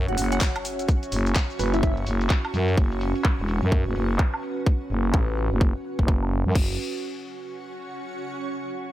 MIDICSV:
0, 0, Header, 1, 8, 480
1, 0, Start_track
1, 0, Tempo, 472441
1, 899, Time_signature, 4, 2, 24, 8
1, 9063, End_track
2, 0, Start_track
2, 0, Title_t, "Analog synth pad"
2, 0, Program_c, 0, 89
2, 0, Note_on_c, 0, 61, 86
2, 0, Note_on_c, 0, 66, 77
2, 0, Note_on_c, 0, 73, 94
2, 2781, Note_off_c, 0, 73, 0
2, 2819, Note_on_c, 0, 71, 93
2, 6618, Note_off_c, 0, 66, 0
2, 6619, Note_off_c, 0, 61, 0
2, 6621, Note_off_c, 0, 71, 0
2, 9063, End_track
3, 0, Start_track
3, 0, Title_t, "Ambient pad"
3, 0, Program_c, 1, 92
3, 0, Note_on_c, 1, 61, 79
3, 0, Note_on_c, 1, 66, 72
3, 0, Note_on_c, 1, 76, 77
3, 0, Note_on_c, 1, 78, 81
3, 0, Note_on_c, 1, 85, 70
3, 247, Note_off_c, 1, 76, 0
3, 6649, Note_off_c, 1, 61, 0
3, 6659, Note_off_c, 1, 66, 0
3, 6659, Note_off_c, 1, 85, 0
3, 6660, Note_off_c, 1, 78, 0
3, 6661, Note_on_c, 1, 61, 75
3, 6751, Note_on_c, 1, 66, 76
3, 8539, Note_off_c, 1, 61, 0
3, 8540, Note_off_c, 1, 66, 0
3, 9063, End_track
4, 0, Start_track
4, 0, Title_t, "Digital synth lead"
4, 0, Program_c, 2, 84
4, 84, Note_on_c, 2, 66, 90
4, 145, Note_off_c, 2, 66, 0
4, 179, Note_on_c, 2, 66, 75
4, 272, Note_off_c, 2, 66, 0
4, 1764, Note_on_c, 2, 64, 92
4, 1825, Note_off_c, 2, 64, 0
4, 1858, Note_on_c, 2, 64, 74
4, 1952, Note_off_c, 2, 64, 0
4, 9063, End_track
5, 0, Start_track
5, 0, Title_t, "Synth stab"
5, 0, Program_c, 3, 62
5, 325, Note_on_c, 3, 54, 78
5, 325, Note_on_c, 3, 61, 73
5, 325, Note_on_c, 3, 78, 86
5, 454, Note_off_c, 3, 54, 0
5, 454, Note_off_c, 3, 61, 0
5, 454, Note_off_c, 3, 78, 0
5, 1620, Note_on_c, 3, 54, 92
5, 1620, Note_on_c, 3, 71, 103
5, 1621, Note_on_c, 3, 61, 85
5, 1788, Note_off_c, 3, 54, 0
5, 1788, Note_off_c, 3, 61, 0
5, 1788, Note_off_c, 3, 71, 0
5, 9063, End_track
6, 0, Start_track
6, 0, Title_t, "FM bass"
6, 0, Program_c, 4, 39
6, 86, Note_on_c, 4, 30, 98
6, 164, Note_off_c, 4, 30, 0
6, 180, Note_on_c, 4, 30, 90
6, 404, Note_off_c, 4, 30, 0
6, 1140, Note_on_c, 4, 30, 98
6, 1365, Note_off_c, 4, 30, 0
6, 1619, Note_on_c, 4, 30, 99
6, 2084, Note_off_c, 4, 30, 0
6, 2099, Note_on_c, 4, 30, 95
6, 2324, Note_off_c, 4, 30, 0
6, 2580, Note_on_c, 4, 42, 98
6, 2804, Note_off_c, 4, 42, 0
6, 2819, Note_on_c, 4, 30, 90
6, 3182, Note_off_c, 4, 30, 0
6, 3445, Note_on_c, 4, 28, 99
6, 3662, Note_off_c, 4, 28, 0
6, 3685, Note_on_c, 4, 42, 95
6, 3902, Note_off_c, 4, 42, 0
6, 3926, Note_on_c, 4, 30, 100
6, 4004, Note_off_c, 4, 30, 0
6, 4020, Note_on_c, 4, 30, 96
6, 4244, Note_off_c, 4, 30, 0
6, 4980, Note_on_c, 4, 30, 94
6, 5204, Note_off_c, 4, 30, 0
6, 5219, Note_on_c, 4, 33, 102
6, 5582, Note_off_c, 4, 33, 0
6, 5606, Note_on_c, 4, 30, 96
6, 5822, Note_off_c, 4, 30, 0
6, 6086, Note_on_c, 4, 30, 94
6, 6542, Note_off_c, 4, 30, 0
6, 6566, Note_on_c, 4, 42, 95
6, 6644, Note_off_c, 4, 42, 0
6, 6659, Note_on_c, 4, 30, 93
6, 6882, Note_off_c, 4, 30, 0
6, 9063, End_track
7, 0, Start_track
7, 0, Title_t, "Impact"
7, 0, Program_c, 5, 103
7, 0, Note_on_c, 5, 60, 70
7, 899, Note_off_c, 5, 60, 0
7, 9063, End_track
8, 0, Start_track
8, 0, Title_t, "Drums"
8, 85, Note_on_c, 9, 42, 37
8, 179, Note_on_c, 9, 46, 100
8, 181, Note_on_c, 9, 82, 80
8, 187, Note_off_c, 9, 42, 0
8, 280, Note_off_c, 9, 46, 0
8, 283, Note_off_c, 9, 82, 0
8, 325, Note_on_c, 9, 42, 65
8, 328, Note_on_c, 9, 82, 32
8, 416, Note_on_c, 9, 39, 118
8, 419, Note_on_c, 9, 36, 127
8, 422, Note_off_c, 9, 82, 0
8, 422, Note_on_c, 9, 82, 43
8, 427, Note_off_c, 9, 42, 0
8, 518, Note_off_c, 9, 39, 0
8, 521, Note_off_c, 9, 36, 0
8, 523, Note_off_c, 9, 82, 0
8, 566, Note_on_c, 9, 42, 55
8, 566, Note_on_c, 9, 76, 83
8, 660, Note_on_c, 9, 46, 93
8, 662, Note_on_c, 9, 82, 77
8, 667, Note_off_c, 9, 42, 0
8, 667, Note_off_c, 9, 76, 0
8, 761, Note_off_c, 9, 46, 0
8, 764, Note_off_c, 9, 82, 0
8, 805, Note_on_c, 9, 42, 65
8, 808, Note_on_c, 9, 82, 33
8, 899, Note_on_c, 9, 36, 125
8, 902, Note_off_c, 9, 82, 0
8, 902, Note_on_c, 9, 82, 42
8, 907, Note_off_c, 9, 42, 0
8, 1001, Note_off_c, 9, 36, 0
8, 1003, Note_off_c, 9, 82, 0
8, 1045, Note_on_c, 9, 42, 50
8, 1048, Note_on_c, 9, 82, 28
8, 1139, Note_on_c, 9, 46, 107
8, 1141, Note_off_c, 9, 82, 0
8, 1141, Note_on_c, 9, 82, 72
8, 1147, Note_off_c, 9, 42, 0
8, 1240, Note_off_c, 9, 46, 0
8, 1243, Note_off_c, 9, 82, 0
8, 1285, Note_on_c, 9, 42, 64
8, 1287, Note_on_c, 9, 82, 30
8, 1376, Note_on_c, 9, 39, 121
8, 1379, Note_on_c, 9, 36, 115
8, 1382, Note_off_c, 9, 82, 0
8, 1382, Note_on_c, 9, 82, 42
8, 1386, Note_off_c, 9, 42, 0
8, 1478, Note_off_c, 9, 39, 0
8, 1481, Note_off_c, 9, 36, 0
8, 1483, Note_off_c, 9, 82, 0
8, 1524, Note_on_c, 9, 42, 36
8, 1527, Note_on_c, 9, 82, 30
8, 1618, Note_on_c, 9, 46, 101
8, 1621, Note_off_c, 9, 82, 0
8, 1621, Note_on_c, 9, 82, 74
8, 1626, Note_off_c, 9, 42, 0
8, 1720, Note_off_c, 9, 46, 0
8, 1723, Note_off_c, 9, 82, 0
8, 1765, Note_on_c, 9, 42, 67
8, 1767, Note_on_c, 9, 82, 31
8, 1859, Note_on_c, 9, 36, 116
8, 1860, Note_off_c, 9, 82, 0
8, 1860, Note_on_c, 9, 82, 47
8, 1866, Note_off_c, 9, 42, 0
8, 1961, Note_off_c, 9, 36, 0
8, 1962, Note_off_c, 9, 82, 0
8, 2004, Note_on_c, 9, 42, 35
8, 2099, Note_on_c, 9, 46, 108
8, 2101, Note_on_c, 9, 82, 75
8, 2106, Note_off_c, 9, 42, 0
8, 2200, Note_off_c, 9, 46, 0
8, 2203, Note_off_c, 9, 82, 0
8, 2245, Note_on_c, 9, 42, 65
8, 2248, Note_on_c, 9, 82, 31
8, 2336, Note_on_c, 9, 39, 113
8, 2339, Note_on_c, 9, 36, 127
8, 2342, Note_off_c, 9, 82, 0
8, 2342, Note_on_c, 9, 82, 41
8, 2347, Note_off_c, 9, 42, 0
8, 2438, Note_off_c, 9, 39, 0
8, 2441, Note_off_c, 9, 36, 0
8, 2443, Note_off_c, 9, 82, 0
8, 2485, Note_on_c, 9, 42, 53
8, 2485, Note_on_c, 9, 76, 83
8, 2579, Note_on_c, 9, 46, 94
8, 2581, Note_on_c, 9, 82, 76
8, 2587, Note_off_c, 9, 42, 0
8, 2587, Note_off_c, 9, 76, 0
8, 2681, Note_off_c, 9, 46, 0
8, 2683, Note_off_c, 9, 82, 0
8, 2726, Note_on_c, 9, 42, 67
8, 2728, Note_on_c, 9, 82, 33
8, 2819, Note_on_c, 9, 36, 126
8, 2822, Note_off_c, 9, 82, 0
8, 2822, Note_on_c, 9, 82, 42
8, 2827, Note_off_c, 9, 42, 0
8, 2921, Note_off_c, 9, 36, 0
8, 2924, Note_off_c, 9, 82, 0
8, 2966, Note_on_c, 9, 42, 48
8, 2968, Note_on_c, 9, 82, 27
8, 3059, Note_on_c, 9, 46, 113
8, 3062, Note_off_c, 9, 82, 0
8, 3062, Note_on_c, 9, 82, 70
8, 3067, Note_off_c, 9, 42, 0
8, 3161, Note_off_c, 9, 46, 0
8, 3163, Note_off_c, 9, 82, 0
8, 3205, Note_on_c, 9, 42, 63
8, 3208, Note_on_c, 9, 82, 30
8, 3297, Note_on_c, 9, 39, 125
8, 3299, Note_on_c, 9, 36, 123
8, 3302, Note_off_c, 9, 82, 0
8, 3302, Note_on_c, 9, 82, 43
8, 3307, Note_off_c, 9, 42, 0
8, 3398, Note_off_c, 9, 39, 0
8, 3401, Note_off_c, 9, 36, 0
8, 3404, Note_off_c, 9, 82, 0
8, 3446, Note_on_c, 9, 42, 33
8, 3448, Note_on_c, 9, 82, 29
8, 3538, Note_on_c, 9, 46, 98
8, 3541, Note_off_c, 9, 82, 0
8, 3541, Note_on_c, 9, 82, 76
8, 3547, Note_off_c, 9, 42, 0
8, 3640, Note_off_c, 9, 46, 0
8, 3642, Note_off_c, 9, 82, 0
8, 3685, Note_on_c, 9, 42, 62
8, 3688, Note_on_c, 9, 82, 31
8, 3779, Note_on_c, 9, 36, 123
8, 3787, Note_off_c, 9, 42, 0
8, 3789, Note_off_c, 9, 82, 0
8, 3881, Note_off_c, 9, 36, 0
8, 3926, Note_on_c, 9, 42, 35
8, 4019, Note_on_c, 9, 46, 109
8, 4022, Note_on_c, 9, 82, 73
8, 4027, Note_off_c, 9, 42, 0
8, 4121, Note_off_c, 9, 46, 0
8, 4124, Note_off_c, 9, 82, 0
8, 4165, Note_on_c, 9, 42, 61
8, 4168, Note_on_c, 9, 82, 30
8, 4257, Note_on_c, 9, 39, 122
8, 4259, Note_on_c, 9, 36, 123
8, 4267, Note_off_c, 9, 42, 0
8, 4269, Note_off_c, 9, 82, 0
8, 4358, Note_off_c, 9, 39, 0
8, 4361, Note_off_c, 9, 36, 0
8, 4405, Note_on_c, 9, 42, 52
8, 4405, Note_on_c, 9, 76, 90
8, 4499, Note_on_c, 9, 46, 95
8, 4502, Note_on_c, 9, 82, 73
8, 4507, Note_off_c, 9, 42, 0
8, 4507, Note_off_c, 9, 76, 0
8, 4601, Note_off_c, 9, 46, 0
8, 4603, Note_off_c, 9, 82, 0
8, 4646, Note_on_c, 9, 42, 60
8, 4648, Note_on_c, 9, 82, 32
8, 4739, Note_on_c, 9, 36, 124
8, 4747, Note_off_c, 9, 42, 0
8, 4750, Note_off_c, 9, 82, 0
8, 4841, Note_off_c, 9, 36, 0
8, 4886, Note_on_c, 9, 42, 48
8, 4888, Note_on_c, 9, 82, 29
8, 4980, Note_on_c, 9, 46, 105
8, 4982, Note_off_c, 9, 82, 0
8, 4982, Note_on_c, 9, 82, 71
8, 4987, Note_off_c, 9, 42, 0
8, 5081, Note_off_c, 9, 46, 0
8, 5084, Note_off_c, 9, 82, 0
8, 5126, Note_on_c, 9, 42, 61
8, 5128, Note_on_c, 9, 82, 31
8, 5217, Note_on_c, 9, 39, 116
8, 5219, Note_on_c, 9, 36, 121
8, 5227, Note_off_c, 9, 42, 0
8, 5230, Note_off_c, 9, 82, 0
8, 5319, Note_off_c, 9, 39, 0
8, 5321, Note_off_c, 9, 36, 0
8, 5460, Note_on_c, 9, 46, 101
8, 5462, Note_on_c, 9, 82, 75
8, 5561, Note_off_c, 9, 46, 0
8, 5564, Note_off_c, 9, 82, 0
8, 5605, Note_on_c, 9, 42, 62
8, 5608, Note_on_c, 9, 82, 32
8, 5699, Note_on_c, 9, 36, 125
8, 5707, Note_off_c, 9, 42, 0
8, 5710, Note_off_c, 9, 82, 0
8, 5801, Note_off_c, 9, 36, 0
8, 5939, Note_on_c, 9, 46, 105
8, 5941, Note_on_c, 9, 82, 72
8, 6040, Note_off_c, 9, 46, 0
8, 6043, Note_off_c, 9, 82, 0
8, 6085, Note_on_c, 9, 36, 59
8, 6176, Note_on_c, 9, 39, 109
8, 6179, Note_off_c, 9, 36, 0
8, 6179, Note_on_c, 9, 36, 127
8, 6278, Note_off_c, 9, 39, 0
8, 6281, Note_off_c, 9, 36, 0
8, 6325, Note_on_c, 9, 76, 90
8, 6419, Note_on_c, 9, 46, 94
8, 6422, Note_on_c, 9, 82, 76
8, 6427, Note_off_c, 9, 76, 0
8, 6521, Note_off_c, 9, 46, 0
8, 6523, Note_off_c, 9, 82, 0
8, 6565, Note_on_c, 9, 42, 63
8, 6568, Note_on_c, 9, 82, 33
8, 6659, Note_on_c, 9, 36, 112
8, 6659, Note_on_c, 9, 49, 88
8, 6667, Note_off_c, 9, 42, 0
8, 6670, Note_off_c, 9, 82, 0
8, 6761, Note_off_c, 9, 36, 0
8, 6761, Note_off_c, 9, 49, 0
8, 9063, End_track
0, 0, End_of_file